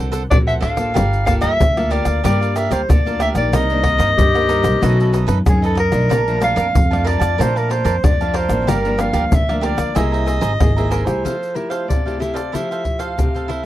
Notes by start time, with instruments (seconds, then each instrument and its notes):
Already playing: upright bass C2, nylon-string guitar D3 C4 F#4 A#4, cavaquinho D4 A4 C5
0.00 cavaquinho F#5
0.12 cavaquinho D4 A4 C5 F#5, pandeiro, shaker
0.30 upright bass A#1, nylon-string guitar A2 C4 F#4 A#4, soprano saxophone D5, pandeiro, tamborim, shaker, surdo
0.47 cavaquinho A4 C5 F#5, soprano saxophone E5, pandeiro, shaker
0.60 upright bass A1, cavaquinho D4 A4 C5, soprano saxophone F5, pandeiro, tamborim
0.76 nylon-string guitar A#3 F4 A4, pandeiro, tamborim, shaker
0.94 upright bass G1, nylon-string guitar G3, cavaquinho G4 A#4 D5 F5, pandeiro, tamborim, shaker, surdo
1.13 pandeiro, shaker
1.25 nylon-string guitar A#3 F4 A4, cavaquinho G4 A#4 D5 F5, soprano saxophone F5, pandeiro, tamborim, shaker, surdo
1.41 upright bass D2, cavaquinho G4 A#4 D5 F5, soprano saxophone E5, pandeiro, tamborim, shaker
1.59 upright bass D2, nylon-string guitar D3, pandeiro, shaker, surdo
1.77 nylon-string guitar A#3 F4 A4, cavaquinho A#4 D5 F5, pandeiro, tamborim, shaker
1.90 cavaquinho G4 A#4 D5 F5, soprano saxophone D5, pandeiro
2.05 upright bass D2, cavaquinho A#4 D5 F5, pandeiro, tamborim, shaker
2.24 upright bass G2, nylon-string guitar G3 A#3 F4 A4, cavaquinho G4 A#4 D5 F5, soprano saxophone D5, pandeiro, tamborim, shaker, surdo
2.41 cavaquinho A#4 D5 F5, pandeiro, shaker
2.55 cavaquinho G4 A#4 D5 F5, soprano saxophone E5, pandeiro, shaker
2.71 upright bass D2, cavaquinho G4 A#4 D5 F5, soprano saxophone C5, pandeiro, shaker
2.88 upright bass D2, nylon-string guitar D3 A#3 F4 A4, soprano saxophone D5, pandeiro, tamborim, shaker, surdo
3.06 nylon-string guitar A#3 F4 A4, cavaquinho A#4 D5 F5, pandeiro, shaker
3.20 cavaquinho G4 A#4 D5 F5, soprano saxophone E5, pandeiro, tamborim, shaker
3.35 upright bass A#1, nylon-string guitar D#3 A#3 D4, soprano saxophone D5, pandeiro, tamborim, shaker
3.53 upright bass C2, nylon-string guitar C3, cavaquinho D#4 A#4 C5 D#5, soprano saxophone D#5, pandeiro, tamborim, shaker, surdo
3.70 nylon-string guitar D#3 A#3 D4, pandeiro, shaker
3.83 nylon-string guitar D#3 A#3, cavaquinho D#4 A#4 C5 D#5, pandeiro, tamborim, surdo
3.98 upright bass G2, cavaquinho D#4 A#4 C5 D#5, pandeiro, tamborim, shaker
4.17 upright bass G2, nylon-string guitar G2, clarinet G4, pandeiro, shaker, surdo
4.34 nylon-string guitar D#3 A#3, cavaquinho A#4 C5 D#5, pandeiro, tamborim, shaker
4.49 cavaquinho D#4 A#4 C5 D#5, pandeiro, shaker
4.63 upright bass C2, cavaquinho A#4 C5 D#5, pandeiro, tamborim, shaker
4.80 upright bass B1, nylon-string guitar B2 D#3 A3 C#4, cavaquinho D#4 A4 B4 D#5, clarinet F#4, pandeiro, tamborim, shaker, surdo
5.00 cavaquinho A4 B4 D#5, pandeiro, shaker
5.12 cavaquinho D#4 A4 B4 D#5, pandeiro, shaker
5.27 upright bass F#2, cavaquinho D#4 A4 B4 D#5, pandeiro, shaker
5.46 nylon-string guitar F#2 D#3 A3 C#4, upright bass F#2, soprano saxophone G#4, pandeiro, tamborim, shaker, surdo
5.62 cavaquinho A4 B4 D#5, soprano saxophone A4, pandeiro, shaker
5.75 cavaquinho D#4 D#5, pandeiro, tamborim
5.80 soprano saxophone A#4
5.92 upright bass B1, nylon-string guitar F3 A3 D4, pandeiro, tamborim, shaker
6.09 upright bass A#1, nylon-string guitar A#2, cavaquinho A#4 D5 F5 A5, pandeiro, tamborim, shaker, surdo
6.28 nylon-string guitar F3 A3 D4, pandeiro, shaker
6.40 nylon-string guitar F3 A3 D4, cavaquinho A#4 D5 F5 A5, soprano saxophone F5, pandeiro, tamborim, shaker
6.56 upright bass F2, cavaquinho A#4 D5 F5 A5, pandeiro, tamborim, shaker
6.74 nylon-string guitar F2, upright bass F2, pandeiro, shaker, surdo
6.91 nylon-string guitar F3 A3 D4, cavaquinho D5 F5 A5, pandeiro, tamborim, shaker
7.04 cavaquinho A#4 D5 F5 A5, soprano saxophone D5, pandeiro
7.19 upright bass F2, cavaquinho D5 F5 A5, pandeiro, tamborim, shaker
7.38 nylon-string guitar A#2 F3 A3 D4, upright bass A#2, cavaquinho A#4 D5 F5 A5, soprano saxophone C5, pandeiro, tamborim, shaker, surdo
7.56 soprano saxophone A#4, cavaquinho D5 F5 A5, pandeiro, shaker
7.69 cavaquinho A#4 D5 F5 A5, soprano saxophone C5, pandeiro
7.84 upright bass F2, cavaquinho A#4 D5 F5 A5, pandeiro, shaker
8.04 upright bass F2, nylon-string guitar F2 F3 A3 D4, soprano saxophone D5, pandeiro, tamborim, shaker, surdo
8.21 nylon-string guitar F3 A3 D4, cavaquinho D5 F5 A5, pandeiro, shaker
8.34 cavaquinho A#4 D5 F5 A5, soprano saxophone C5, pandeiro, tamborim
8.49 upright bass A1, nylon-string guitar F3 A#3 D4, pandeiro, tamborim, shaker
8.67 upright bass G1, nylon-string guitar G2, cavaquinho G4 A#4 D5 F5, soprano saxophone A#4, pandeiro, tamborim, shaker, surdo
8.85 nylon-string guitar F3 A#3 D4, pandeiro, shaker
8.98 nylon-string guitar F3 A#3 D4, cavaquinho G4 A#4 D5 F5, soprano saxophone F5, pandeiro, tamborim, shaker
9.13 upright bass D2, cavaquinho G4 A#4 D5 F5, pandeiro, tamborim, shaker
9.32 upright bass D2, nylon-string guitar D3, soprano saxophone E5, pandeiro, shaker, surdo
9.49 nylon-string guitar F3 A#3 D4, cavaquinho A#4 D5 F5, pandeiro, tamborim, shaker
9.57 soprano saxophone E5
9.61 cavaquinho G4 A#4 D5 F5, soprano saxophone D5, pandeiro
9.77 upright bass D2, cavaquinho A#4 D5 F5, pandeiro, tamborim, shaker
9.95 upright bass C2, nylon-string guitar C3 A#3 E4 G#4, cavaquinho G#4 C5 E5 A#5, soprano saxophone D#5, pandeiro, tamborim, shaker, surdo
10.12 cavaquinho C5 E5 A#5, pandeiro, shaker
10.26 cavaquinho G#4 C5 E5 A#5, pandeiro, shaker
10.41 upright bass G#1, cavaquinho G#4 C5 E5 A#5, pandeiro, shaker
10.60 upright bass G#1, nylon-string guitar C3 A#3 E4 G#4, pandeiro, tamborim, shaker, surdo
10.76 nylon-string guitar A#3 E4 G#4, cavaquinho C5 E5 A#5, pandeiro, shaker
10.90 cavaquinho G#4 C5 E5 A#5, soprano saxophone A#4, pandeiro, tamborim, shaker
11.05 upright bass C2, nylon-string guitar A3 E4 G4, soprano saxophone C5, pandeiro, tamborim, shaker
11.23 nylon-string guitar F3, cavaquinho A4 C5 F5, pandeiro, shaker, surdo
11.43 pandeiro, shaker
11.55 nylon-string guitar A3 E4 G4, soprano saxophone A#4, muted cavaquinho stroke, pandeiro
11.70 cavaquinho A4 C5 F5, soprano saxophone C5, pandeiro, shaker
11.88 nylon-string guitar C3, soprano saxophone D5, pandeiro, shaker, surdo
12.06 nylon-string guitar A3 E4 G4, cavaquinho A4 C5 F5, pandeiro, shaker
12.19 nylon-string guitar A3 E4 G4, cavaquinho E4 A4 C5 F5, soprano saxophone E5, pandeiro, shaker
12.34 cavaquinho A4 C5 F5, soprano saxophone D5, pandeiro, shaker
12.52 nylon-string guitar F3 A3 E4 G4, cavaquinho E4 A4 C5 F5, soprano saxophone E5, pandeiro, shaker, surdo
12.71 cavaquinho A4 C5 F5, pandeiro, shaker
12.84 muted cavaquinho stroke, pandeiro, surdo
12.99 cavaquinho A4 C5 F5, soprano saxophone F5, pandeiro, shaker
13.17 nylon-string guitar C3 A3 G4, pandeiro, shaker, surdo
13.35 cavaquinho A4 C5 F5, pandeiro, shaker
13.48 cavaquinho E4 A4 C5 F5, soprano saxophone E5, pandeiro